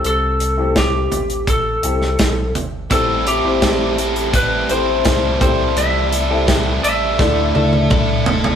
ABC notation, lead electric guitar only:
X:1
M:4/4
L:1/8
Q:1/4=84
K:Ador
V:1 name="Lead electric guitar"
A2 G2 A3 z | A G3 B c2 c | e2 z e4 z |]